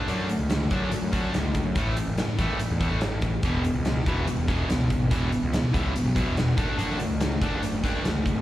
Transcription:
0.08 picked electric bass F#2, distorted electric guitar D3 A3 D4, closed hi-hat
0.29 distorted electric guitar D3 A3, closed hi-hat
0.40 picked electric bass C#2
0.50 distorted electric guitar D3 A3, snare, closed hi-hat
0.71 picked electric bass F#2, distorted electric guitar D3 A3 D4, kick, closed hi-hat
0.92 distorted electric guitar D3 A3, closed hi-hat
1.02 picked electric bass F#2
1.12 distorted electric guitar D3 A3 D4, kick, closed hi-hat
1.33 picked electric bass C#2, distorted electric guitar D3 A3, snare, closed hi-hat
1.54 distorted electric guitar D3 A3, kick, closed hi-hat
1.65 picked electric bass F#2
1.75 picked electric bass A1, distorted electric guitar A2 E3 A3, kick, closed hi-hat
1.96 distorted electric guitar A2 E3, closed hi-hat
2.06 picked electric bass F#1
2.18 distorted electric guitar A2 E3, snare, closed hi-hat
2.38 picked electric bass F#1, distorted electric guitar A2 E3 A3, kick, closed hi-hat
2.59 distorted electric guitar A2 E3, closed hi-hat
2.70 picked electric bass E2
2.80 distorted electric guitar A2 E3 A3, kick, closed hi-hat
2.91 picked electric bass A1
3.01 distorted electric guitar A2 E3, snare, closed hi-hat
3.22 picked electric bass A1, distorted electric guitar A2 E3, kick, closed hi-hat
3.43 picked electric bass E1, distorted electric guitar E2 B2 E3, kick, closed hi-hat
3.64 distorted electric guitar E2 B2, closed hi-hat
3.75 picked electric bass C#2
3.85 distorted electric guitar E2 B2, snare, closed hi-hat
4.06 picked electric bass E1, distorted electric guitar E2 B2 E3, kick, closed hi-hat
4.27 distorted electric guitar E2 B2, closed hi-hat
4.37 picked electric bass E1
4.48 distorted electric guitar E2 B2 E3, kick, closed hi-hat
4.69 picked electric bass C#2, distorted electric guitar E2 B2, snare, closed hi-hat
4.90 distorted electric guitar E2 B2, kick, closed hi-hat
5.01 picked electric bass G#1
5.11 picked electric bass E1, distorted electric guitar E2 B2 E3, kick, closed hi-hat
5.31 distorted electric guitar E2 B2, closed hi-hat
5.42 picked electric bass C#2
5.52 distorted electric guitar E2 B2, snare, closed hi-hat
5.73 picked electric bass C#2, distorted electric guitar E2 B2 E3, kick, closed hi-hat
5.94 distorted electric guitar E2 B2, closed hi-hat
6.05 picked electric bass B1
6.15 distorted electric guitar E2 B2 E3, kick, closed hi-hat
6.26 picked electric bass E1
6.36 distorted electric guitar E2 B2, snare, closed hi-hat
6.57 picked electric bass F#1, distorted electric guitar D3 A3 D4, kick, closed hi-hat
6.77 picked electric bass F#1, distorted electric guitar D3 A3 D4, closed hi-hat
6.99 distorted electric guitar D3 A3, closed hi-hat
7.10 picked electric bass C#2
7.21 distorted electric guitar D3 A3, snare, closed hi-hat
7.41 picked electric bass F#1, distorted electric guitar D3 A3 D4, kick, closed hi-hat
7.62 distorted electric guitar D3 A3, closed hi-hat
7.73 picked electric bass F#1
7.84 distorted electric guitar D3 A3 D4, kick, closed hi-hat
8.04 picked electric bass C#2, distorted electric guitar D3 A3, snare, closed hi-hat
8.26 distorted electric guitar D3 A3, kick, closed hi-hat
8.35 picked electric bass G#1

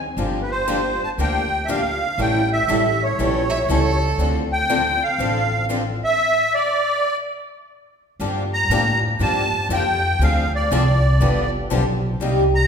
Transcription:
0.17 upright bass G1, steel-string acoustic guitar D3 F3 A#3 D4 G4
0.42 accordion B4
0.51 accordion C5
0.68 steel-string acoustic guitar D3 F3 A#3 D4 G4
1.03 accordion A5
1.18 upright bass D2, steel-string acoustic guitar D3 F3 A#3 D4 G4, accordion G5
1.65 steel-string acoustic guitar D3 F3, accordion E5
1.69 steel-string acoustic guitar A#3 D4 G4, accordion F5
2.18 upright bass A1, steel-string acoustic guitar E3 G3 C#4 E4 A4, accordion G5
2.53 accordion E5
2.68 upright bass A1, steel-string acoustic guitar E3 G3 C#4 E4 A4
3.03 accordion C#5
3.18 upright bass A#1, steel-string acoustic guitar E3 G3 C#4 E4 A4
3.50 violin E5
3.68 upright bass C#2, steel-string acoustic guitar E3 G3 C#4 E4 A4, violin A4
4.17 upright bass D2, steel-string acoustic guitar D3 F3 C4 D4 A4
4.52 accordion G5
4.70 steel-string acoustic guitar D3 F3 C4 D4 A4
5.03 accordion F5
5.18 upright bass A1, steel-string acoustic guitar D3 F3 C4 D4 A4
5.70 steel-string acoustic guitar D3 F3 C4 D4 A4
6.04 accordion E5
6.54 accordion D5
8.20 upright bass G2, steel-string acoustic guitar D3 F3 A#3 D4 G4
8.53 accordion A#5
8.69 upright bass A2, steel-string acoustic guitar D3 F3 A#3 D4 G4
9.20 upright bass G2, steel-string acoustic guitar D3 F3 A#3 D4 G4, accordion A5
9.69 upright bass F2, steel-string acoustic guitar D3 F3 A#3 D4 G4
9.73 accordion G5
10.19 upright bass D2, steel-string acoustic guitar D3 F3 C4 D4 G#4, accordion F5
10.55 accordion D5
10.71 upright bass C2, steel-string acoustic guitar D3 F3 C4 D4 G#4
11.20 upright bass G1, steel-string acoustic guitar D3 F3 B3 D4 G4
11.70 upright bass B1, steel-string acoustic guitar D3 F3 B3 D4 G4
12.20 upright bass C2, steel-string acoustic guitar C3 G3 A#3 D#4 G4
12.55 accordion A#5

